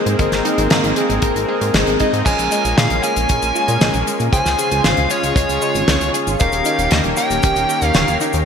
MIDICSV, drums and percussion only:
0, 0, Header, 1, 2, 480
1, 0, Start_track
1, 0, Tempo, 517241
1, 177, Time_signature, 4, 2, 24, 8
1, 7842, End_track
2, 0, Start_track
2, 0, Title_t, "Drums"
2, 60, Note_on_c, 9, 42, 58
2, 153, Note_off_c, 9, 42, 0
2, 177, Note_on_c, 9, 42, 88
2, 179, Note_on_c, 9, 36, 119
2, 270, Note_off_c, 9, 42, 0
2, 272, Note_off_c, 9, 36, 0
2, 296, Note_on_c, 9, 38, 36
2, 298, Note_on_c, 9, 42, 56
2, 389, Note_off_c, 9, 38, 0
2, 391, Note_off_c, 9, 42, 0
2, 420, Note_on_c, 9, 42, 85
2, 512, Note_off_c, 9, 42, 0
2, 539, Note_on_c, 9, 42, 59
2, 632, Note_off_c, 9, 42, 0
2, 652, Note_on_c, 9, 42, 90
2, 658, Note_on_c, 9, 38, 124
2, 745, Note_off_c, 9, 42, 0
2, 751, Note_off_c, 9, 38, 0
2, 780, Note_on_c, 9, 42, 60
2, 873, Note_off_c, 9, 42, 0
2, 893, Note_on_c, 9, 42, 81
2, 986, Note_off_c, 9, 42, 0
2, 1019, Note_on_c, 9, 42, 58
2, 1112, Note_off_c, 9, 42, 0
2, 1132, Note_on_c, 9, 42, 106
2, 1137, Note_on_c, 9, 36, 117
2, 1224, Note_off_c, 9, 42, 0
2, 1229, Note_off_c, 9, 36, 0
2, 1262, Note_on_c, 9, 42, 61
2, 1355, Note_off_c, 9, 42, 0
2, 1498, Note_on_c, 9, 42, 54
2, 1591, Note_off_c, 9, 42, 0
2, 1615, Note_on_c, 9, 42, 94
2, 1619, Note_on_c, 9, 38, 116
2, 1708, Note_off_c, 9, 42, 0
2, 1711, Note_off_c, 9, 38, 0
2, 1734, Note_on_c, 9, 42, 51
2, 1827, Note_off_c, 9, 42, 0
2, 1852, Note_on_c, 9, 42, 77
2, 1861, Note_on_c, 9, 36, 67
2, 1945, Note_off_c, 9, 42, 0
2, 1954, Note_off_c, 9, 36, 0
2, 1982, Note_on_c, 9, 42, 51
2, 2075, Note_off_c, 9, 42, 0
2, 2096, Note_on_c, 9, 36, 112
2, 2097, Note_on_c, 9, 82, 52
2, 2100, Note_on_c, 9, 42, 97
2, 2101, Note_on_c, 9, 49, 104
2, 2188, Note_off_c, 9, 36, 0
2, 2190, Note_off_c, 9, 82, 0
2, 2193, Note_off_c, 9, 42, 0
2, 2194, Note_off_c, 9, 49, 0
2, 2217, Note_on_c, 9, 42, 58
2, 2219, Note_on_c, 9, 82, 46
2, 2310, Note_off_c, 9, 42, 0
2, 2312, Note_off_c, 9, 82, 0
2, 2335, Note_on_c, 9, 82, 79
2, 2338, Note_on_c, 9, 42, 84
2, 2427, Note_off_c, 9, 82, 0
2, 2431, Note_off_c, 9, 42, 0
2, 2457, Note_on_c, 9, 82, 46
2, 2461, Note_on_c, 9, 42, 59
2, 2550, Note_off_c, 9, 82, 0
2, 2553, Note_off_c, 9, 42, 0
2, 2577, Note_on_c, 9, 38, 117
2, 2582, Note_on_c, 9, 42, 101
2, 2583, Note_on_c, 9, 82, 57
2, 2669, Note_off_c, 9, 38, 0
2, 2674, Note_off_c, 9, 42, 0
2, 2676, Note_off_c, 9, 82, 0
2, 2693, Note_on_c, 9, 42, 60
2, 2786, Note_off_c, 9, 42, 0
2, 2815, Note_on_c, 9, 42, 76
2, 2817, Note_on_c, 9, 82, 77
2, 2908, Note_off_c, 9, 42, 0
2, 2909, Note_off_c, 9, 82, 0
2, 2936, Note_on_c, 9, 42, 65
2, 2936, Note_on_c, 9, 82, 49
2, 3029, Note_off_c, 9, 42, 0
2, 3029, Note_off_c, 9, 82, 0
2, 3055, Note_on_c, 9, 42, 97
2, 3055, Note_on_c, 9, 82, 58
2, 3060, Note_on_c, 9, 36, 123
2, 3148, Note_off_c, 9, 42, 0
2, 3148, Note_off_c, 9, 82, 0
2, 3153, Note_off_c, 9, 36, 0
2, 3175, Note_on_c, 9, 82, 47
2, 3177, Note_on_c, 9, 42, 59
2, 3268, Note_off_c, 9, 82, 0
2, 3270, Note_off_c, 9, 42, 0
2, 3301, Note_on_c, 9, 82, 83
2, 3394, Note_off_c, 9, 82, 0
2, 3416, Note_on_c, 9, 42, 62
2, 3421, Note_on_c, 9, 82, 49
2, 3509, Note_off_c, 9, 42, 0
2, 3513, Note_off_c, 9, 82, 0
2, 3537, Note_on_c, 9, 82, 62
2, 3538, Note_on_c, 9, 42, 101
2, 3539, Note_on_c, 9, 38, 114
2, 3629, Note_off_c, 9, 82, 0
2, 3631, Note_off_c, 9, 42, 0
2, 3632, Note_off_c, 9, 38, 0
2, 3653, Note_on_c, 9, 42, 54
2, 3654, Note_on_c, 9, 82, 45
2, 3746, Note_off_c, 9, 42, 0
2, 3747, Note_off_c, 9, 82, 0
2, 3782, Note_on_c, 9, 42, 83
2, 3782, Note_on_c, 9, 82, 78
2, 3875, Note_off_c, 9, 42, 0
2, 3875, Note_off_c, 9, 82, 0
2, 3896, Note_on_c, 9, 82, 49
2, 3900, Note_on_c, 9, 42, 52
2, 3988, Note_off_c, 9, 82, 0
2, 3993, Note_off_c, 9, 42, 0
2, 4015, Note_on_c, 9, 36, 127
2, 4021, Note_on_c, 9, 42, 110
2, 4022, Note_on_c, 9, 82, 59
2, 4108, Note_off_c, 9, 36, 0
2, 4114, Note_off_c, 9, 42, 0
2, 4115, Note_off_c, 9, 82, 0
2, 4136, Note_on_c, 9, 38, 37
2, 4138, Note_on_c, 9, 82, 52
2, 4139, Note_on_c, 9, 42, 60
2, 4228, Note_off_c, 9, 38, 0
2, 4231, Note_off_c, 9, 82, 0
2, 4232, Note_off_c, 9, 42, 0
2, 4256, Note_on_c, 9, 42, 75
2, 4259, Note_on_c, 9, 82, 85
2, 4349, Note_off_c, 9, 42, 0
2, 4351, Note_off_c, 9, 82, 0
2, 4375, Note_on_c, 9, 42, 56
2, 4375, Note_on_c, 9, 82, 49
2, 4467, Note_off_c, 9, 82, 0
2, 4468, Note_off_c, 9, 42, 0
2, 4495, Note_on_c, 9, 38, 112
2, 4497, Note_on_c, 9, 42, 104
2, 4497, Note_on_c, 9, 82, 52
2, 4587, Note_off_c, 9, 38, 0
2, 4590, Note_off_c, 9, 42, 0
2, 4590, Note_off_c, 9, 82, 0
2, 4612, Note_on_c, 9, 42, 59
2, 4705, Note_off_c, 9, 42, 0
2, 4734, Note_on_c, 9, 82, 79
2, 4738, Note_on_c, 9, 42, 76
2, 4827, Note_off_c, 9, 82, 0
2, 4831, Note_off_c, 9, 42, 0
2, 4858, Note_on_c, 9, 42, 61
2, 4860, Note_on_c, 9, 82, 51
2, 4950, Note_off_c, 9, 42, 0
2, 4953, Note_off_c, 9, 82, 0
2, 4973, Note_on_c, 9, 36, 127
2, 4977, Note_on_c, 9, 82, 57
2, 4984, Note_on_c, 9, 42, 98
2, 5065, Note_off_c, 9, 36, 0
2, 5070, Note_off_c, 9, 82, 0
2, 5077, Note_off_c, 9, 42, 0
2, 5098, Note_on_c, 9, 42, 56
2, 5101, Note_on_c, 9, 82, 46
2, 5190, Note_off_c, 9, 42, 0
2, 5194, Note_off_c, 9, 82, 0
2, 5212, Note_on_c, 9, 82, 75
2, 5305, Note_off_c, 9, 82, 0
2, 5336, Note_on_c, 9, 82, 45
2, 5339, Note_on_c, 9, 42, 58
2, 5429, Note_off_c, 9, 82, 0
2, 5432, Note_off_c, 9, 42, 0
2, 5455, Note_on_c, 9, 38, 120
2, 5457, Note_on_c, 9, 42, 110
2, 5462, Note_on_c, 9, 82, 59
2, 5548, Note_off_c, 9, 38, 0
2, 5549, Note_off_c, 9, 42, 0
2, 5555, Note_off_c, 9, 82, 0
2, 5575, Note_on_c, 9, 82, 47
2, 5578, Note_on_c, 9, 42, 62
2, 5668, Note_off_c, 9, 82, 0
2, 5671, Note_off_c, 9, 42, 0
2, 5699, Note_on_c, 9, 42, 74
2, 5705, Note_on_c, 9, 82, 85
2, 5792, Note_off_c, 9, 42, 0
2, 5797, Note_off_c, 9, 82, 0
2, 5819, Note_on_c, 9, 42, 55
2, 5821, Note_on_c, 9, 82, 53
2, 5912, Note_off_c, 9, 42, 0
2, 5914, Note_off_c, 9, 82, 0
2, 5935, Note_on_c, 9, 82, 55
2, 5937, Note_on_c, 9, 42, 98
2, 5947, Note_on_c, 9, 36, 127
2, 6027, Note_off_c, 9, 82, 0
2, 6030, Note_off_c, 9, 42, 0
2, 6040, Note_off_c, 9, 36, 0
2, 6052, Note_on_c, 9, 82, 52
2, 6060, Note_on_c, 9, 42, 65
2, 6145, Note_off_c, 9, 82, 0
2, 6153, Note_off_c, 9, 42, 0
2, 6171, Note_on_c, 9, 82, 76
2, 6179, Note_on_c, 9, 42, 73
2, 6263, Note_off_c, 9, 82, 0
2, 6272, Note_off_c, 9, 42, 0
2, 6299, Note_on_c, 9, 42, 51
2, 6302, Note_on_c, 9, 82, 53
2, 6391, Note_off_c, 9, 42, 0
2, 6394, Note_off_c, 9, 82, 0
2, 6410, Note_on_c, 9, 42, 99
2, 6414, Note_on_c, 9, 82, 49
2, 6421, Note_on_c, 9, 38, 113
2, 6503, Note_off_c, 9, 42, 0
2, 6507, Note_off_c, 9, 82, 0
2, 6513, Note_off_c, 9, 38, 0
2, 6531, Note_on_c, 9, 42, 63
2, 6624, Note_off_c, 9, 42, 0
2, 6651, Note_on_c, 9, 82, 80
2, 6664, Note_on_c, 9, 42, 83
2, 6743, Note_off_c, 9, 82, 0
2, 6757, Note_off_c, 9, 42, 0
2, 6777, Note_on_c, 9, 82, 47
2, 6784, Note_on_c, 9, 42, 61
2, 6870, Note_off_c, 9, 82, 0
2, 6877, Note_off_c, 9, 42, 0
2, 6892, Note_on_c, 9, 82, 57
2, 6897, Note_on_c, 9, 42, 109
2, 6901, Note_on_c, 9, 36, 127
2, 6985, Note_off_c, 9, 82, 0
2, 6990, Note_off_c, 9, 42, 0
2, 6994, Note_off_c, 9, 36, 0
2, 7014, Note_on_c, 9, 82, 44
2, 7020, Note_on_c, 9, 42, 54
2, 7107, Note_off_c, 9, 82, 0
2, 7113, Note_off_c, 9, 42, 0
2, 7142, Note_on_c, 9, 82, 74
2, 7235, Note_off_c, 9, 82, 0
2, 7253, Note_on_c, 9, 82, 45
2, 7258, Note_on_c, 9, 42, 60
2, 7345, Note_off_c, 9, 82, 0
2, 7351, Note_off_c, 9, 42, 0
2, 7369, Note_on_c, 9, 82, 54
2, 7375, Note_on_c, 9, 38, 122
2, 7378, Note_on_c, 9, 42, 112
2, 7462, Note_off_c, 9, 82, 0
2, 7467, Note_off_c, 9, 38, 0
2, 7471, Note_off_c, 9, 42, 0
2, 7497, Note_on_c, 9, 42, 53
2, 7499, Note_on_c, 9, 82, 42
2, 7589, Note_off_c, 9, 42, 0
2, 7592, Note_off_c, 9, 82, 0
2, 7614, Note_on_c, 9, 82, 75
2, 7623, Note_on_c, 9, 42, 83
2, 7707, Note_off_c, 9, 82, 0
2, 7715, Note_off_c, 9, 42, 0
2, 7729, Note_on_c, 9, 82, 50
2, 7741, Note_on_c, 9, 42, 60
2, 7822, Note_off_c, 9, 82, 0
2, 7833, Note_off_c, 9, 42, 0
2, 7842, End_track
0, 0, End_of_file